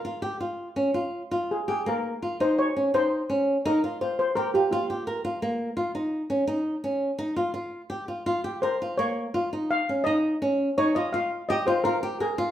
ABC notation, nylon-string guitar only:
X:1
M:5/4
L:1/8
Q:1/4=168
K:Bbdor
V:1 name="Nylon-string guitar"
F G F2 D F2 F2 G | B,2 F E2 D E2 D2 | E F F2 G F F G B F | B,2 F E2 D E2 D2 |
E F F2 G F F G B F | B,2 F E2 D E2 D2 | E F F2 G F F G B F |]